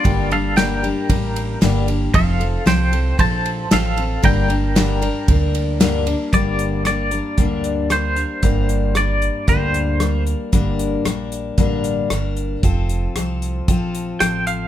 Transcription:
<<
  \new Staff \with { instrumentName = "Clean electric guitar" } { \time 4/4 \key g \minor \tempo 4 = 114 <f' d''>8 <a' f''>8 <bes' g''>2 r4 | <a' f''>4 <c'' g''>4 <c'' a''>4 <a' f''>4 | <bes' g''>2. r4 | d''4 d''2 c''4~ |
c''4 d''4 c''4. r8 | r1 | r2. g''8 f''8 | }
  \new Staff \with { instrumentName = "Steel-string acoustic guitar" } { \time 4/4 \key g \minor <g, d g bes d' g'>8 <g bes d' g'>8 <g, d g bes d' g'>8 <g bes d' g'>8 <g bes d' g'>4 <g, d g bes d' g'>8 <g bes d' g'>8 | <f c' f' a'>8 <c' f' a'>8 <f c' f' a'>8 <c' f' a'>8 <f c' f' a'>4 <f c' f' a'>8 <c' f' a'>8 | <g, d g bes d' bes'>8 <g bes d' bes'>8 <g, d g bes d' bes'>8 <g bes d' bes'>8 <g bes d' bes'>4 <g, d g bes d' bes'>8 <g bes d' bes'>8 | <g, d g bes d' bes'>4 <g bes d' bes'>8 <g bes d' bes'>8 <g, d g bes d' bes'>4 <g bes bes'>8 <g bes d' bes'>8 |
<g, d g bes d' bes'>4 <g bes d' bes'>4 <g, d g bes d' bes'>4 <g bes d' bes'>4 | <g, d g bes d' bes'>4 <g bes d' bes'>4 <g, d g bes d' bes'>4 <g bes d' bes'>4 | <f c' f' a'>4 <f c' f' a'>4 <f c' f' a'>4 <f c' f' a'>4 | }
  \new Staff \with { instrumentName = "Upright bass" } { \clef bass \time 4/4 \key g \minor g,,2 a,,4 g,,4 | f,,4 c,4 bes,,4 a,,4 | g,,2 d,2 | g,,2 d,2 |
g,,2 d,2 | g,,4 bes,,4 a,,4 g,,4 | f,,4 c,4 bes,,4 a,,4 | }
  \new DrumStaff \with { instrumentName = "Drums" } \drummode { \time 4/4 <bd cymr>8 cymr8 <cymr sn>8 cymr8 <bd cymr>8 cymr8 <cymr sn>8 cymr8 | <bd cymr>8 cymr8 <cymr sn>8 cymr8 <bd cymr>8 cymr8 <cymr sn>8 cymr8 | <bd cymr>8 cymr8 <cymr sn>8 cymr8 <bd cymr>8 cymr8 <cymr sn>8 cymr8 | <hh bd>8 hh8 <hh ss>8 hh8 <hh bd>8 hh8 <hh ss>8 hh8 |
<hh bd>8 hh8 <hh ss>8 hh8 <hh bd>8 hh8 <hh ss>8 hh8 | <hh bd>8 hh8 <hh ss>8 hh8 <hh bd>8 hh8 <hh ss>8 hh8 | <hh bd>8 hh8 <hh ss>8 hh8 <hh bd>8 hh8 <hh ss>8 hh8 | }
>>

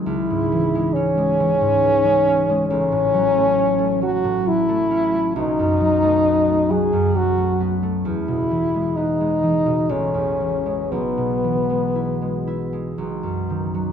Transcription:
<<
  \new Staff \with { instrumentName = "French horn" } { \time 3/4 \key cis \minor \tempo 4 = 67 e'4 cis'2 | \key e \major cis'4. fis'8 e'4 | dis'4. gis'8 fis'8 r8 | e'4 dis'4 cis'4 |
b2 r4 | }
  \new Staff \with { instrumentName = "Harp" } { \clef bass \time 3/4 \key cis \minor <cis, gis>16 gis,16 e16 gis16 cis'16 gis16 e16 gis,16 e16 gis16 cis'16 gis16 | \key e \major a,,16 a,16 fis16 a16 cis'16 a16 fis16 a,16 fis16 a16 cis'16 a16 | b,,16 fis,16 fis16 a16 b16 a16 fis16 fis,16 fis16 a16 b16 a16 | e,16 b,16 e16 gis16 b16 gis16 e16 b,16 a,,16 e,16 e16 gis16 |
b,,16 b,16 e16 gis16 e'16 gis16 e'16 gis16 b,,16 fis,16 dis16 fis16 | }
>>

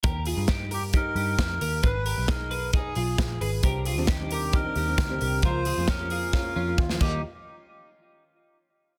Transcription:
<<
  \new Staff \with { instrumentName = "Melodica" } { \time 4/4 \key ees \major \tempo 4 = 134 r4. g'8 bes'2 | ces''4 bes'4 aes'4 aes'8. r16 | r4. g'8 bes'2 | c''4 bes'4 bes'4 f'8 g'8 |
r1 | }
  \new Staff \with { instrumentName = "Clean electric guitar" } { \time 4/4 \key ees \major <g' bes'>8 <f' aes'>8 <ees' g'>8 <g' bes'>8 <ees' g'>8 <ees' g'>4 <g' bes'>8 | <aes' ces''>8 <g' bes'>8 <ees' aes'>8 <aes' ces''>8 <ees' aes'>8 <f' aes'>4 <aes' ces''>8 | <g' bes'>8 <f' aes'>8 <ees' g'>8 <g' bes'>8 <ees' g'>8 <ees' g'>4 <g' bes'>8 | <f' bes'>8 <f' aes'>8 <des' g'>8 <f' aes'>8 <des' f'>8 <des' f'>4 ees'8 |
r1 | }
  \new Staff \with { instrumentName = "Steel-string acoustic guitar" } { \time 4/4 \key ees \major r1 | r1 | <g c' d' g'>8. <c ees g c' d' g'>8 <c ees g c' d' g'>4 <g c' d' g'>8 <g c' d' g'>8 <c ees g c' d' g'>8. | <f bes aes'>8. <des f bes f' aes'>8 <des f bes f' aes'>4 <bes f' aes'>8 <bes f' aes'>8 <des f bes f' aes'>16 <ees g bes ees' g'>8 |
r1 | }
  \new Staff \with { instrumentName = "Picked electric bass" } { \clef bass \time 4/4 \key ees \major ees,8. g,4.~ g,16 g,8 f,8 ees,8 | aes,,8. ces,4.~ ces,16 ces,8 bes,,8 aes,,8 | c,8. ees,4.~ ees,16 ees,8 d,8 c,8 | des,8. f,4.~ f,16 f,8 ees,8 ees,8 |
r1 | }
  \new DrumStaff \with { instrumentName = "Drums" } \drummode { \time 4/4 <hh bd>8 hho8 <hh bd sn>8 hho8 <hh bd>8 hho8 <hh bd sn>8 hho8 | <hh bd>8 hho8 <hh bd sn>8 hho8 <hh bd>8 hho8 <hh bd sn>8 hho8 | <hh bd>8 hho8 <hh bd sn>8 hho8 <hh bd>8 hho8 <hh bd sn>8 hho8 | <hh bd>8 hho8 <hh bd sn>8 hho8 <bd sn>4 bd16 sn16 <cymc bd>8 |
r4 r4 r4 r4 | }
>>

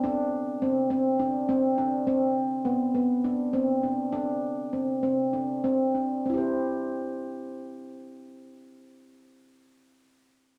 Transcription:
\new Staff \with { instrumentName = "Handpan" } { \time 7/8 \key c \major \tempo 4 = 99 d'4 c'8 c'8 d'8 c'8 d'8 | c'4 b8 b8 d'8 c'8 d'8 | d'4 c'8 c'8 d'8 c'8 d'8 | <c' e' g' c''>2.~ <c' e' g' c''>8~ |
<c' e' g' c''>2.~ <c' e' g' c''>8 | }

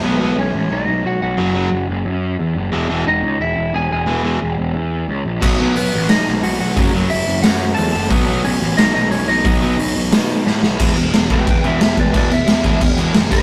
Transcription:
<<
  \new Staff \with { instrumentName = "Lead electric guitar" } { \time 4/4 \key e \major \tempo 4 = 179 r4 <cis' cis''>4 <dis' dis''>4 <fis' fis''>8 <fis' fis''>8~ | <fis' fis''>4. r2 r8 | r4 <dis' dis''>4 <e' e''>4 <gis' gis''>8 <gis' gis''>8~ | <gis' gis''>4. r2 r8 |
r4 <b b'>4 <dis' dis''>4 <fis' fis''>8 <fis' fis''>8 | r4 <e' e''>4 <fis' fis''>4 <a' a''>8 <a' a''>8 | r4 <cis' cis''>4 <dis' dis''>8 <dis' dis''>8 <cis' cis''>8 <dis' dis''>8~ | <dis' dis''>2. r4 |
r4. <b' g''>8 <b' g''>8 <gis' e''>8 <gis' e''>8 <b' d''>8 | <b' d''>8 e''2 r4 b'8 | }
  \new Staff \with { instrumentName = "Overdriven electric guitar" } { \clef bass \time 4/4 \key e \major r1 | r1 | r1 | r1 |
<b, fis b>2.~ <b, fis b>8 <b, fis b>8 | <fis, cis fis>2.~ <fis, cis fis>8 <fis, cis fis>8 | <b, fis b>2.~ <b, fis b>8 <b, fis b>8 | <b, fis b>2.~ <b, fis b>8 <b, fis b>8 |
r1 | r1 | }
  \new Staff \with { instrumentName = "Overdriven electric guitar" } { \clef bass \time 4/4 \key e \major <b, fis b>8 <b, fis b>8 r2. | <fis, cis fis>8 <fis, cis fis>8 r2. | <e, b, e>8 <e, b, e>8 r2. | <e, b, e>8 <e, b, e>8 r2. |
<b, fis b>8 <b, fis b>8 r2. | <fis, cis fis>8 <fis, cis fis>8 r2. | <b, fis b>8 <b, fis b>8 r2. | <b, fis b>8 <b, fis b>8 r2. |
<e, b, e>8 <e, b,>8 <e, b,>8 <e, b, e>8 <e, b,>8 <e, b, e>8 <e, b,>8 <e, b,>8 | <e, b, e>8 <e, b,>8 <e, b,>8 <e, b, e>8 <e, b,>8 <e, b, e>8 <e, b,>8 <g, d g>8 | }
  \new Staff \with { instrumentName = "Overdriven electric guitar" } { \clef bass \time 4/4 \key e \major <b, fis b>8 <b, fis b>8 r2. | <fis, cis fis>8 <fis, cis fis>8 r2. | <e, b, e>8 <e, b, e>8 r2. | <e, b, e>8 <e, b, e>8 r2. |
<b, fis b>8 <b, fis b>8 r2. | <fis, cis fis>8 <fis, cis fis>8 r2. | <b, fis b>8 <b, fis b>8 r2. | <b, fis b>8 <b, fis b>8 r2. |
<e, b, e>8 <e, b,>8 <e, b,>8 <e, b, e>8 <e, b,>8 <e, b, e>8 <e, b,>8 <e, b,>8 | <e, b, e>8 <e, b,>8 <e, b,>8 <e, b, e>8 <e, b,>8 <e, b, e>8 <e, b,>8 <g, d g>8 | }
  \new Staff \with { instrumentName = "Picked electric bass" } { \clef bass \time 4/4 \key e \major b,,8 b,,8 b,,8 a,,8 b,,8 b,,8 b,,8 b,,8 | fis,,4 fis,,8 fis,,8 fis,4 e,8 fis,,8 | e,,8 e,,8 e,,8 cis,8 e,,8 e,,8 e,,8 e,,8 | e,,4 e,,8 e,,8 e,4 cis,8 ais,,8 |
b,,8 b,,8 b,,8 a,,8 b,,8 b,,8 b,,8 b,,8 | fis,,4 fis,,8 fis,,8 fis,4 e,8 fis,,8 | b,,8 b,,8 b,,8 a,,8 b,,8 b,,8 b,,8 b,,8 | b,,4 b,,8 b,,8 b,4 a,8 b,,8 |
e,,8 e,,8 e,,8 e,,8 e,,8 e,,8 e,,8 e,,8 | e,,4 e,,4 e,,4 fis,,8 g,,8 | }
  \new DrumStaff \with { instrumentName = "Drums" } \drummode { \time 4/4 r4 r4 r4 r4 | r4 r4 r4 r4 | r4 r4 r4 r4 | r4 r4 r4 r4 |
<cymc bd>4 hho4 <hho sn>4 hho4 | <hho bd>4 hho4 <hho sn>4 hho4 | <hho bd>4 hho4 <hho sn>4 hho4 | <hho bd>4 hho4 <hho sn>4 sn8 sn8 |
<cymc bd>8 cymc8 <cymc sn>8 <cymc bd>8 <cymc bd>8 cymc8 <cymc sn>8 <cymc bd>8 | <cymc bd>8 cymc8 <cymc sn>8 <cymc bd>8 <cymc bd>8 cymc8 <cymc sn>8 <cymc bd>8 | }
>>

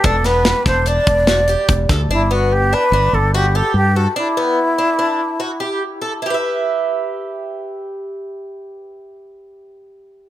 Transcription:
<<
  \new Staff \with { instrumentName = "Flute" } { \time 5/4 \key e \minor \tempo 4 = 146 a'8 b'4 c''8 d''2~ d''8 r8 | e'8 fis'8 g'8 b'4 a'8 g'8 a'8 g'8 fis'8 | e'1 r4 | r1 r4 |
r1 r4 | }
  \new Staff \with { instrumentName = "Twelve-string acoustic guitar" } { \time 5/4 \key e \minor d'8 b4 d'8 d'4 fis'8 g'4 a'8 | d'8 b4 d'8 d'4 fis'8 g'4 a'8 | d'8 b4 d'8 d'4 fis'8 g'4 a'8 | <e' g' b' e''>1~ <e' g' b' e''>4~ |
<e' g' b' e''>1~ <e' g' b' e''>4 | }
  \new Staff \with { instrumentName = "Fretless electric bass" } { \clef bass \time 5/4 \key e \minor e,,4. e,,4 e,,4. e,,8 d,8 | g,,2 g,,8 g,,4. g,4 | r1 r4 | r1 r4 |
r1 r4 | }
  \new DrumStaff \with { instrumentName = "Drums" } \drummode { \time 5/4 <hh bd>8 <hh sn>8 <hh sn>8 <hh bd sn>8 hh8 <hh bd>8 <hh sn>8 hh8 <hh bd>8 <hh bd sn>8 | r4 r4 r4 r4 r4 | r4 r4 r4 r4 r4 | r4 r4 r4 r4 r4 |
r4 r4 r4 r4 r4 | }
>>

